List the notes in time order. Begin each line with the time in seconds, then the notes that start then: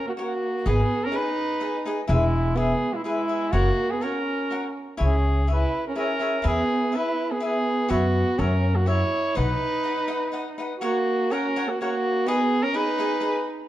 0.07 A#3 F#4
0.17 A#3 F#4 A#4 C#5 F#5
0.66 G#1 B3 D#4 G#4 B4 D#5
1.04 C#4 A#4
1.11 D#4 G#4 B4 D#5
1.16 D#4 B4
1.60 D#4 G#4 B4 D#5
1.85 D#4 G#4 B4 D#5
2.08 E1 G#3 E4 G#4 B4 E5
2.55 B3 E4 G#4 B4 E5
2.92 G#3 E4
3.04 G#3 E4 G#4 B4 E5
3.28 E4 G#4 B4 E5
3.52 F#1 A#3 F#4 A#4 C#5 F#5
3.90 B3 G#4
4.01 C#4 F#4 A#4 C#5 F#5
4.50 F#4 A#4 C#5 F#5
4.97 C#2 E4 G#4 C#5 E5
5.04 C#4 G#4
5.47 E4 G#4 C#5 E5
5.53 E4 B4
5.87 C#4 A#4
5.96 C#4 E4 G#4 A#4 C#5 E5
6.19 E4 G#4 C#5 E5
6.42 E2 B3 E4 G#4 B4 E5
6.47 G#4
6.92 E4 G#4 B4 E5
6.96 E4 B4
7.31 B3 G#4
7.40 B3 E4 G#4 B4 E5
7.45 G#4
7.88 F#2 B3 F#4 B4 C#5 E5
8.38 F#2 C#4 F#4 A#4 C#5 E5
8.74 A#3 F#4
8.86 E4 F#4 A#4 C#5 E5
9.35 B1 D#4 B4 D#5 F#5
9.83 D#4 B4 D#5 F#5
10.08 D#4 B4 D#5 F#5
10.32 D#4 B4 D#5 F#5
10.58 D#4 B4 D#5 F#5
10.80 A#3 F#4 A#4 C#5 F#5
11.30 C#4 F#4 A#4 C#5 F#5
11.56 F#4 A#4 C#5 F#5
11.67 A#3 F#4
11.78 A#3 F#4 C#5
11.82 A#4 F#5
12.26 B3 D#4 G#4 B4 D#5
12.63 C#4 A#4
12.73 D#4 G#4 B4 D#5
12.98 D#4 G#4 B4 D#5
13.20 D#4 G#4 B4 D#5